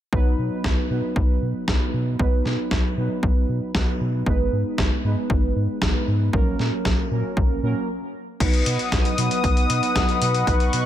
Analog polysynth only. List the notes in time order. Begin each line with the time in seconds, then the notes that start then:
0.13 F#3 B3 D#4 B4
0.90 F#3 B3 D#4 B4
1.68 F#3 B3 D#4 B4
2.20 F#3 B3 D#4 B4
2.97 F#3 B3 D#4 B4
3.75 F#3 B3 D#4 B4
4.27 G#3 B3 D#4 B4
5.04 G#3 B3 D#4 B4
5.82 G#3 B3 D#4 B4
6.34 F#3 A#3 C#4 A#4
7.11 F#3 A#3 C#4 A#4
7.63 F#3 A#3 C#4 A#4
8.40 F#3 B3 D#4 B4
9.18 F#3 B3 D#4 B4
9.96 F#3 B3 D#4 B4
10.47 F#3 B3 D#4 B4